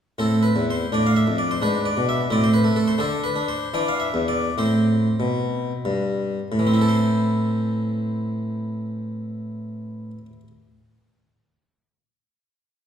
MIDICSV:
0, 0, Header, 1, 2, 480
1, 0, Start_track
1, 0, Key_signature, 0, "minor"
1, 0, Tempo, 473934
1, 174, Time_signature, 6, 3, 24, 8
1, 3528, Tempo, 519931
1, 4008, Tempo, 570885
1, 4488, Tempo, 628272
1, 5448, Tempo, 666667
1, 10513, End_track
2, 0, Start_track
2, 0, Title_t, "Harpsichord"
2, 0, Program_c, 0, 6
2, 187, Note_on_c, 0, 45, 45
2, 190, Note_on_c, 0, 60, 34
2, 198, Note_on_c, 0, 69, 74
2, 432, Note_on_c, 0, 71, 64
2, 435, Note_off_c, 0, 69, 0
2, 481, Note_off_c, 0, 45, 0
2, 566, Note_on_c, 0, 40, 43
2, 638, Note_off_c, 0, 71, 0
2, 713, Note_on_c, 0, 72, 66
2, 851, Note_off_c, 0, 40, 0
2, 881, Note_off_c, 0, 60, 0
2, 901, Note_off_c, 0, 72, 0
2, 935, Note_on_c, 0, 45, 53
2, 937, Note_on_c, 0, 62, 38
2, 952, Note_on_c, 0, 74, 84
2, 1053, Note_off_c, 0, 74, 0
2, 1079, Note_on_c, 0, 77, 67
2, 1176, Note_off_c, 0, 77, 0
2, 1179, Note_on_c, 0, 76, 79
2, 1213, Note_off_c, 0, 45, 0
2, 1290, Note_on_c, 0, 41, 49
2, 1371, Note_off_c, 0, 76, 0
2, 1401, Note_on_c, 0, 74, 73
2, 1515, Note_off_c, 0, 74, 0
2, 1530, Note_on_c, 0, 72, 73
2, 1569, Note_off_c, 0, 41, 0
2, 1600, Note_off_c, 0, 62, 0
2, 1637, Note_on_c, 0, 44, 54
2, 1639, Note_off_c, 0, 72, 0
2, 1640, Note_on_c, 0, 62, 42
2, 1648, Note_on_c, 0, 71, 80
2, 1874, Note_off_c, 0, 71, 0
2, 1878, Note_on_c, 0, 74, 85
2, 1916, Note_off_c, 0, 44, 0
2, 1997, Note_on_c, 0, 47, 58
2, 2070, Note_off_c, 0, 74, 0
2, 2115, Note_on_c, 0, 76, 104
2, 2269, Note_off_c, 0, 47, 0
2, 2294, Note_off_c, 0, 62, 0
2, 2334, Note_on_c, 0, 45, 67
2, 2334, Note_on_c, 0, 60, 43
2, 2339, Note_off_c, 0, 76, 0
2, 2352, Note_on_c, 0, 74, 96
2, 2458, Note_off_c, 0, 74, 0
2, 2469, Note_on_c, 0, 72, 82
2, 2568, Note_on_c, 0, 71, 91
2, 2576, Note_off_c, 0, 72, 0
2, 2615, Note_off_c, 0, 45, 0
2, 2676, Note_on_c, 0, 57, 61
2, 2798, Note_on_c, 0, 69, 73
2, 2804, Note_off_c, 0, 71, 0
2, 2913, Note_on_c, 0, 72, 87
2, 2920, Note_off_c, 0, 69, 0
2, 2966, Note_off_c, 0, 57, 0
2, 3003, Note_off_c, 0, 60, 0
2, 3020, Note_on_c, 0, 50, 64
2, 3025, Note_on_c, 0, 62, 49
2, 3037, Note_off_c, 0, 72, 0
2, 3038, Note_on_c, 0, 69, 99
2, 3244, Note_off_c, 0, 69, 0
2, 3278, Note_on_c, 0, 71, 90
2, 3319, Note_off_c, 0, 50, 0
2, 3388, Note_off_c, 0, 62, 0
2, 3401, Note_on_c, 0, 62, 55
2, 3489, Note_off_c, 0, 71, 0
2, 3529, Note_on_c, 0, 72, 103
2, 3691, Note_off_c, 0, 62, 0
2, 3762, Note_on_c, 0, 52, 67
2, 3763, Note_off_c, 0, 72, 0
2, 3766, Note_on_c, 0, 62, 46
2, 3768, Note_on_c, 0, 74, 94
2, 3887, Note_off_c, 0, 74, 0
2, 3898, Note_on_c, 0, 77, 81
2, 4004, Note_on_c, 0, 76, 77
2, 4015, Note_off_c, 0, 77, 0
2, 4055, Note_off_c, 0, 52, 0
2, 4123, Note_on_c, 0, 40, 62
2, 4205, Note_off_c, 0, 76, 0
2, 4243, Note_on_c, 0, 74, 83
2, 4415, Note_off_c, 0, 40, 0
2, 4452, Note_off_c, 0, 74, 0
2, 4456, Note_off_c, 0, 62, 0
2, 4491, Note_on_c, 0, 45, 58
2, 4493, Note_on_c, 0, 60, 38
2, 4497, Note_on_c, 0, 72, 75
2, 4868, Note_off_c, 0, 45, 0
2, 4964, Note_on_c, 0, 47, 57
2, 5353, Note_off_c, 0, 47, 0
2, 5464, Note_on_c, 0, 43, 58
2, 5525, Note_off_c, 0, 72, 0
2, 5849, Note_off_c, 0, 43, 0
2, 5911, Note_off_c, 0, 60, 0
2, 5943, Note_on_c, 0, 45, 68
2, 5995, Note_on_c, 0, 52, 50
2, 6051, Note_on_c, 0, 60, 54
2, 6100, Note_on_c, 0, 64, 51
2, 6156, Note_on_c, 0, 69, 48
2, 6208, Note_on_c, 0, 72, 52
2, 8527, Note_off_c, 0, 45, 0
2, 8580, Note_off_c, 0, 52, 0
2, 8635, Note_off_c, 0, 60, 0
2, 8684, Note_off_c, 0, 64, 0
2, 8741, Note_off_c, 0, 69, 0
2, 8792, Note_off_c, 0, 72, 0
2, 10513, End_track
0, 0, End_of_file